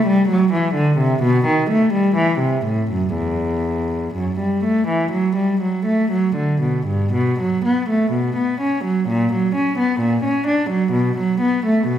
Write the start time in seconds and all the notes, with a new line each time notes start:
0.07 G3
0.29 F#3
0.53 E3
0.75 D3
0.98 C3
1.22 B2
1.46 D#3
1.71 A3
1.93 G3
2.16 E3
2.39 C3
2.66 A2
2.91 F#2
3.15 E2
4.15 F#2
4.40 G3
4.64 A3
4.88 E3
5.12 F#3
5.36 G3
5.61 F#3
5.86 A3
6.12 F#3
6.36 D3
6.61 B2
6.87 G2
7.13 B2
7.40 F#3
7.65 B3
7.89 A3
8.12 B2
8.36 B3
8.61 C#4
8.84 F#3
9.09 A#2
9.33 F#3
9.55 C#4
9.79 B3
10.01 A#2
10.24 C#4
10.47 D4
10.70 F#3
10.92 B2
11.18 F#3
11.41 B3
11.66 A3
11.87 B2